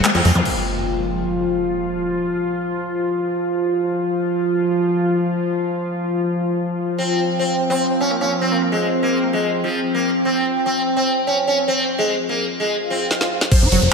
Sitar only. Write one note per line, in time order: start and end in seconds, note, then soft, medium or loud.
0.15 0.30 C4 loud
6.98 7.19 C4 medium
7.39 7.55 C4 medium
7.70 7.85 C4 loud
8.01 8.11 C#4 medium
8.21 8.31 C#4 medium
8.41 8.57 C4 medium
8.72 8.87 G#3 medium
9.03 9.18 A#3 medium
9.33 9.48 G#3 medium
9.64 9.79 F3 medium
9.94 10.10 A#3 medium
10.25 10.45 C4 medium
10.66 10.81 C4 medium
10.96 11.12 C4 medium
11.27 11.37 C#4 medium
11.48 11.58 C#4 medium
11.68 11.83 C4 medium
11.99 12.14 G#3 loud
12.29 12.44 A#3 medium
12.60 12.75 G#3 medium
12.90 13.06 C4 medium
13.52 13.72 C5 loud